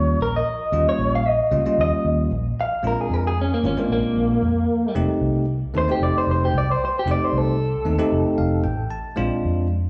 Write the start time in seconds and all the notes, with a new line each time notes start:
Already playing: D#2 G3 A#3 C#4 F4 C#5
0.20 A#1 A#4
0.36 D#5
0.72 D#2 G3 A#3 C#4 F4
0.89 C#5
0.99 A#1
1.15 F5
1.28 D#5
1.51 C#2 G3 A#3 C#4 F4
1.65 G3 A#3 C#4 F4, muted fingered electric bass stroke
1.78 D#2 D#5
2.05 D#2
2.31 A#1
2.61 F5
2.83 A#1 G#3 C4 D4 F4
2.87 A#4
3.01 G#4
3.10 F2 A#4
3.27 G#4
3.41 C#4
3.54 A#3
3.63 G#1 G#3 C4 C#4 D4 F4
3.77 G#3 A#3 C4 D4 F4, muted fingered electric bass stroke
3.90 A#1 A#3
4.17 A#1
4.42 F2
4.95 F1 A3 C4 D#4 G4
5.21 C2
5.74 D#2 A3 C4 D#4 A4 C5
5.88 A3 C4 D#4 G4, muted fingered electric bass stroke
6.00 F1 D5
6.18 C5
6.27 F1
6.31 C5
6.45 G4
6.54 C2
6.58 D5
6.71 C5
6.85 C5
6.99 G4
7.06 F1 A3 C4 D#4 G4
7.11 D5
7.24 C5
7.33 C2
7.38 A4
7.85 D#2 A3 C4 D#4 A4
7.99 A3 C4 D#4 G4, muted fingered electric bass stroke
8.12 F1
8.38 F1 F5
8.64 A1 G5
8.91 A5
9.16 A#1 G#3 C4 D4 F4
9.45 F2